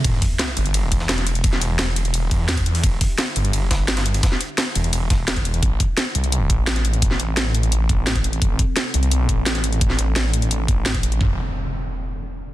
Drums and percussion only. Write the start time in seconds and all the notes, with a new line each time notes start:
0.04 kick, closed hi-hat, ride
0.22 kick, closed hi-hat, open hi-hat
0.39 snare, closed hi-hat, ride
0.48 ride
0.57 closed hi-hat, ride
0.66 closed hi-hat
0.74 closed hi-hat, ride
0.92 kick, closed hi-hat, ride
1.00 snare
1.09 snare, closed hi-hat, ride
1.18 snare, closed hi-hat
1.27 closed hi-hat, ride
1.35 closed hi-hat
1.44 kick, closed hi-hat, ride
1.53 snare, ride
1.61 closed hi-hat, ride
1.79 snare, closed hi-hat, ride
1.96 closed hi-hat, ride
2.05 closed hi-hat
2.14 closed hi-hat, ride
2.31 kick, closed hi-hat, ride
2.49 snare, closed hi-hat, open hi-hat
2.57 kick, closed hi-hat, ride
2.66 closed hi-hat
2.75 closed hi-hat, open hi-hat
2.84 kick, closed hi-hat, ride
3.01 kick, closed hi-hat, open hi-hat
3.18 snare, closed hi-hat, ride
3.27 ride
3.36 closed hi-hat, ride
3.45 closed hi-hat
3.53 closed hi-hat, ride
3.71 kick, snare, closed hi-hat, ride
3.88 snare, closed hi-hat, ride
3.97 snare, closed hi-hat, ride
4.06 closed hi-hat
4.14 closed hi-hat, ride
4.23 kick, snare, closed hi-hat, ride
4.32 snare
4.41 closed hi-hat, ride
4.58 snare, closed hi-hat, ride
4.75 closed hi-hat, ride
4.84 closed hi-hat
4.93 closed hi-hat, ride
5.10 kick, snare, closed hi-hat, ride
5.28 snare, closed hi-hat, ride
5.36 kick, closed hi-hat
5.45 closed hi-hat, ride
5.54 closed hi-hat
5.63 kick, closed hi-hat
5.80 kick, closed hi-hat
5.98 snare, closed hi-hat
6.15 closed hi-hat
6.24 closed hi-hat
6.32 closed hi-hat
6.50 kick, closed hi-hat
6.67 snare, closed hi-hat
6.76 snare, closed hi-hat
6.85 closed hi-hat
6.93 closed hi-hat
7.02 kick, closed hi-hat
7.11 snare
7.20 closed hi-hat
7.37 snare, closed hi-hat
7.55 closed hi-hat
7.63 closed hi-hat
7.72 closed hi-hat
7.89 kick, closed hi-hat
8.07 snare, closed hi-hat
8.16 kick, closed hi-hat
8.24 closed hi-hat
8.33 closed hi-hat
8.42 kick, closed hi-hat
8.59 kick, closed hi-hat
8.77 snare, closed hi-hat
8.94 closed hi-hat
9.03 closed hi-hat
9.11 closed hi-hat
9.29 kick, closed hi-hat
9.46 snare, closed hi-hat
9.55 snare, closed hi-hat
9.64 closed hi-hat
9.72 closed hi-hat
9.81 kick, closed hi-hat
9.90 snare
9.99 closed hi-hat
10.16 snare, closed hi-hat
10.34 closed hi-hat
10.42 closed hi-hat
10.51 closed hi-hat
10.68 kick, closed hi-hat
10.86 snare, closed hi-hat
10.95 kick, closed hi-hat
11.03 closed hi-hat
11.12 closed hi-hat
11.21 kick, floor tom